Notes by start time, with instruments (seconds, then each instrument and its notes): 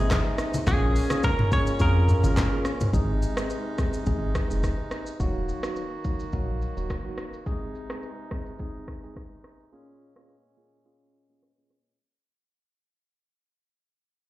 Already playing: sub bass G#1, accordion C3 G#3 D#4, tine electric piano G#3 C4 D#4, clean electric guitar G#4
0.00 tine electric piano G#4
0.11 kick, cross-stick, clap, low conga, shaker
0.38 cross-stick, shaker
0.54 high conga, shaker
0.67 sub bass A#1, accordion A#2 C#4, tine electric piano A#3 C#4 F4 G#4, clean electric guitar G#4, kick, low conga, shaker
0.96 open hi-hat, shaker
1.10 tine electric piano A#3 C#4 F4 G#4, cross-stick, high conga, shaker
1.23 clean electric guitar A#4, kick, low conga, shaker
1.39 mid tom, high conga
1.52 tine electric piano A#3 C#4 F4 G#4, clean electric guitar C#5, kick, high conga, shaker
1.67 shaker
1.80 sub bass F2, tine electric piano A#3 C#4 F4 G#4, clean electric guitar A#4, kick, shaker
2.08 mid tom, shaker
2.24 sub bass G#1, tine electric piano A#3 C#4 F4 G#4, high conga, shaker
2.37 kick, cross-stick, clap, low conga, shaker
2.52 tine electric piano A#3 C#4 F4 G#4
2.65 cross-stick, shaker
2.81 mid tom, high conga, shaker
2.93 sub bass G#1, accordion C3 G#3 D#4, tine electric piano G#3 C4 D#4 G#4, kick, shaker
3.22 shaker
3.37 tine electric piano G#3 C4 D#4 G#4, cross-stick, shaker
3.50 shaker
3.78 tine electric piano G#3 C4 D#4 G#4, kick, cross-stick, shaker
3.93 shaker
4.06 sub bass G#1, tine electric piano G#3 C4 D#4 G#4, kick, shaker
4.35 kick, cross-stick, shaker
4.50 sub bass F1, tine electric piano G#3 C4 D#4 G#4, shaker
4.64 kick, cross-stick, shaker
4.91 cross-stick, shaker
5.07 shaker
5.20 sub bass D#1, accordion D#3 A#3 F#4, tine electric piano F#3 A#3 D#4 F#4, kick, shaker
5.49 shaker
5.63 tine electric piano F#3 A#3 D#4 F#4, cross-stick, shaker
5.76 shaker
6.04 tine electric piano F#3 A#3 D#4 F#4, kick, shaker
6.20 shaker
6.32 sub bass A#1, tine electric piano F#3 A#3 D#4 F#4, kick, shaker
6.62 shaker
6.77 sub bass D#1, tine electric piano F#3 A#3 D#4 F#4, shaker
6.90 kick, cross-stick, shaker
7.05 tine electric piano F#3 A#3 D#4 F#4
7.18 cross-stick, shaker
7.33 shaker
7.46 accordion C3 G#3 D#4, tine electric piano G#3 C4 D#4 G#4, kick, shaker
7.75 shaker
7.90 tine electric piano G#3 C4 D#4 G#4, cross-stick, shaker
8.03 shaker
8.31 tine electric piano G#3 C4 D#4 G#4, kick, cross-stick, shaker
8.46 shaker
8.59 tine electric piano G#3 C4 D#4 G#4, kick, shaker
8.88 kick, cross-stick, shaker
9.03 tine electric piano G#3 C4 D#4 G#4, shaker
9.16 kick, cross-stick, shaker
9.44 cross-stick, shaker
9.60 shaker
9.72 accordion A#2 C#4, tine electric piano A#3 C#4 F4 G#4, shaker
10.02 shaker
10.16 tine electric piano A#3 C#4 F4 G#4, cross-stick
10.29 shaker
10.57 tine electric piano A#3 C#4 F4 G#4
10.85 tine electric piano A#3 C#4 F4 G#4
11.30 tine electric piano A#3 C#4 F4 G#4
11.43 cross-stick
11.58 tine electric piano A#3 C#4 F4 G#4
11.70 cross-stick